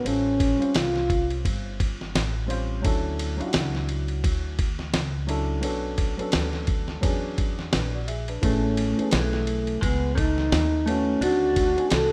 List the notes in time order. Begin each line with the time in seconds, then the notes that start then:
0.03 A1 G3 C#4 F4 A4 C5, ride
0.08 C#4
0.40 kick, ride
0.58 G3 C4 C#4 F4 C5, muted upright bass stroke
0.62 ride
0.75 C2 F4, snare, hi-hat pedal, ride
0.96 snare
1.10 kick, ride
1.30 ride
1.45 G1, kick, ride
1.80 kick, ride
2.01 snare
2.15 A1, snare, hi-hat pedal, ride
2.46 G3 C4 C#4 F4 C5, ride
2.82 D2 F#3 C#4 D4 E4 A4, kick, ride
3.19 ride
3.37 F#3 C#4 D4 E4 F4, muted upright bass stroke, ride
3.47 F#4
3.53 C#2, snare, hi-hat pedal, ride
3.75 snare
3.89 ride
4.08 ride
4.24 D2, kick, ride
4.59 kick, ride
4.79 snare
4.94 C#2, snare, hi-hat pedal, ride
5.27 F#3 C#4 D4 E4 A4, ride
5.61 B1 F#3 B3 C#4 D4 A4, ride
5.98 kick, ride
6.17 F#3 B3 C#4 D4 A4, muted upright bass stroke, ride
6.32 D2, snare, hi-hat pedal, ride
6.53 snare
6.67 kick, ride
6.88 snare
7.01 E2 F#3 B3 C#4 D4 G#4, kick, ride
7.38 kick, ride
7.59 snare
7.73 A#1 D4 B4, snare, hi-hat pedal, ride
7.94 F#4 D5
8.07 G#4 E5, ride
8.28 D4 B4, ride
8.41 A1 E3 A3 B3 C#4 G#4, kick, ride
8.77 ride
8.97 E3 B3 C#4 G#4, muted upright bass stroke, ride
9.11 B1 E3 A3, snare, hi-hat pedal, ride
9.33 snare
9.47 ride
9.67 ride
9.81 C#2 G#3 B3, kick, ride
10.15 A3 D#4, kick, ride
10.38 snare
10.52 D#2, snare, hi-hat pedal, ride
10.86 A3 B3 C#4 E4 F#4, ride
11.20 D2 D#3 A3 C4 D4 F#4, ride
11.56 kick, ride
11.75 D#3 A3 C4 D4 G#5, muted upright bass stroke, ride
11.90 C2 F#4 A4, snare, hi-hat pedal, ride